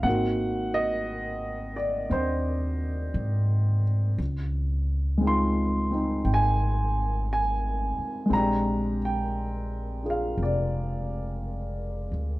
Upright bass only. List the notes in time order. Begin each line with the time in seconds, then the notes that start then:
0.03 G#1
2.11 D#2
3.14 G#2
4.18 C#2
6.25 G#1
7.98 muted upright bass stroke
8.30 A#1
10.38 F1
12.12 D2